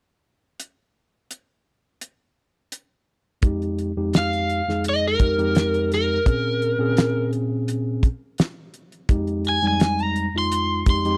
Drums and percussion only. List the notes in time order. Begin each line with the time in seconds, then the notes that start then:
0.60 closed hi-hat
1.31 closed hi-hat
2.01 closed hi-hat
2.72 closed hi-hat
3.42 kick, closed hi-hat
3.62 closed hi-hat
3.79 closed hi-hat
4.13 snare, closed hi-hat
4.33 closed hi-hat
4.50 closed hi-hat
4.69 snare
4.84 closed hi-hat
5.19 kick, closed hi-hat
5.39 closed hi-hat
5.55 snare, closed hi-hat
5.74 closed hi-hat
5.92 snare, closed hi-hat
6.26 kick, closed hi-hat
6.62 closed hi-hat
6.97 snare, closed hi-hat
7.33 closed hi-hat
7.68 closed hi-hat
8.03 kick, closed hi-hat
8.38 snare, closed hi-hat
8.74 closed hi-hat
8.92 closed hi-hat
9.09 kick, closed hi-hat
9.27 closed hi-hat
9.45 closed hi-hat
9.80 snare, closed hi-hat
9.99 closed hi-hat
10.16 closed hi-hat
10.52 closed hi-hat
10.86 kick, closed hi-hat
11.05 closed hi-hat